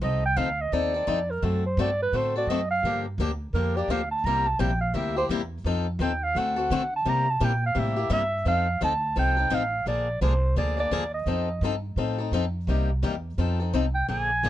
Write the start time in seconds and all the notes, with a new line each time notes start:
0.01 C2 F3 C4 D#4 A4 D#5
0.26 G5
0.36 D2 F3 C4 D#4 A4 F5
0.61 D#5
0.72 D#2 F3 C4 D#4 A4 D5
0.94 C4 D#4 A4
1.07 F2 F3 C4 D#4 A4
1.31 A#4
1.42 F#2 D3 A3 C4 F#4 A4
1.66 C5
1.77 G2 D3 A3 C4 F#4 A4 D5
2.02 B4
2.12 A2 D3 A3 C4 F#4 A4
2.17 C5
2.36 C4 F#4 A4 D5
2.47 F#2 D3 A3 C4 F#4 D#5
2.51 A4
2.71 F5
2.83 G2 D3 F3 A#3 D4 G4
3.18 D2 D3 F3 A#3 D4 G4
3.53 F2 D3 F3 A#3 D4 G4 A#4
3.77 A#3 D4 G4 D5
3.88 D2 D3 F3 A#3 D4 G4 F5
4.11 A5
4.24 C2 C3 G3 A#3 E4 G4 A#5
4.47 A5
4.59 A#1 C3 G3 A#3 E4 G4 G5
4.81 F5
4.94 D2 C3 G3 A#3 E4 G4 E5
5.16 A#3 E4 G4 C5
5.29 E2 C3 G3 A#3 E4 G4
5.64 F2 F3 C4 D#4 A4
5.99 D#2 F3 C4 D#4 A4 G5
6.24 F5
6.35 D2 D3 A3 C4 F#4 A4 F#5
6.56 C4 F#4 A4
6.70 D3 A3 C4 F#4 A4
6.96 A5
7.05 C3 G3 A#3 E4 G4 A#5
7.31 A5
7.40 A#2 C3 G3 A#3 E4 G4
7.44 G5
7.66 F5
7.75 A2 C3 G3 A#3 E4 G4
7.79 E5
7.96 A#3 E4 G4
8.10 G2 C3 G3 A#3 E4 G4 E5
8.45 F2 F3 C4 D#4 A4 F5
8.81 D2 F3 C4 D#4 A4 A5
9.16 C2 F3 C4 D#4 A4 G5
9.37 C4 D#4 A4
9.50 A1 F3 C4 D#4 A4
9.54 F5
9.86 A#1 D3 F3 A#3 D4 G#4 D5
10.21 C2 D3 F3 A#3 D4 G#4 C5
10.56 D2 D3 F3 A#3 D4 G#4 D5
10.77 A#3 D4 G#4 D5
10.91 D#2 D3 F3 A#3 D4 G#4
11.14 D#5
11.26 F2 F3 C4 D#4 A4
11.61 G2 F3 C4 D#4 A4
11.96 A2 F3 C4 D#4 A4
12.18 C4 D#4 A4
12.32 F2 F3 C4 D#4 A4
12.67 C2 C3 G3 A#3 D#4 G4
13.03 E2 C3 G3 A#3 D#4 G4
13.38 F2 F3 C4 D#4 A4
13.60 C4 D#4 A4
13.73 C2 F3 C4 D#4 A4
13.95 G5
14.08 A#1 D3 F3 A#3 D4 G#4 G#5
14.43 G#1 D3 F3 A#3 D4 G#4